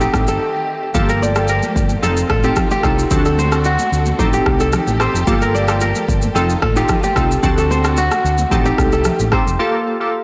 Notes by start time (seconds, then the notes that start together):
Already playing: D#3 A3 C4 D#4 G4 A4 C5
0.01 G4, shaker
0.14 A1, kick, cross-stick, high conga, shaker
0.28 G1 A4, shaker
0.94 G1 F3 A#3 F4 G4 A4, kick, low conga, shaker
1.09 A#4, shaker
1.22 D5, high conga, shaker
1.35 A#3 F4 G4 A4, cross-stick, shaker
1.48 A#4, shaker
1.63 high conga, shaker
1.76 G1, kick, shaker
1.89 high conga, shaker
2.02 F1 D#3 C4 D#4 F4 A4, low conga, shaker
2.17 shaker
2.30 A1 A4, kick, cross-stick, high conga
2.43 C4 D#4 F4 G4 A4, shaker
2.56 kick, cross-stick, low conga, shaker
2.71 G4, high conga, shaker
2.83 C2 C4 D#4 F4 A4, kick, cross-stick, high conga, shaker
2.99 shaker
3.11 D2 D3 C4 D4 F#4 A4, kick, low conga, shaker
3.25 A4, shaker
3.38 C5, high conga, shaker
3.52 C4 D4 F#4 A4, cross-stick, shaker
3.64 F#4, shaker
3.79 high conga, shaker
3.92 D2, shaker
4.06 high conga, shaker
4.19 A1 D#3 C4 D#4 G4 A4, kick, low conga, shaker
4.33 G4, shaker
4.46 C2, kick, cross-stick, high conga
4.60 A4, shaker
4.73 cross-stick, low conga, shaker
4.87 A1, high conga, shaker
5.00 C4 D#4 G4 A4 C5, cross-stick, high conga, shaker
5.14 F1, shaker
5.27 G1 F3 A#3 F4 G4 A4, kick, low conga, shaker
5.42 A#4, shaker
5.55 D5, high conga, shaker
5.68 A#3 F4 G4 A4, cross-stick, shaker
5.81 A#4, shaker
5.95 high conga, shaker
6.09 G1, kick, shaker
6.22 high conga, shaker
6.35 F1 D#3 C4 D#4 F4 A4, low conga, shaker
6.50 shaker
6.62 A1 A4, kick, cross-stick, high conga
6.76 C4 D#4 F4 G4 A4, shaker
6.89 kick, cross-stick, low conga, shaker
7.03 G4, high conga, shaker
7.16 C2 C4 D#4 F4 A4, kick, cross-stick, high conga, shaker
7.32 shaker
7.43 D2 D3 C4 D4 F#4 A4, kick, low conga, shaker
7.58 A4, shaker
7.70 C5, high conga, shaker
7.84 C4 D4 F#4 A4, cross-stick, shaker
7.97 F#4, shaker
8.11 cross-stick, high conga, shaker
8.24 D2, shaker
8.38 high conga, shaker
8.51 A1 D#3 A3 C4 D#4 G4 A4, kick, low conga, shaker
8.66 G4, shaker
8.78 C2, kick, cross-stick, high conga, shaker
8.92 A4, shaker
9.05 cross-stick, low conga, shaker
9.20 A1, high conga, shaker
9.32 C4 D#4 G4 A4 C5, kick, cross-stick, high conga
9.47 F1, shaker
9.59 A#3 F4 G4 A4
10.00 A#3 F4 G4 A4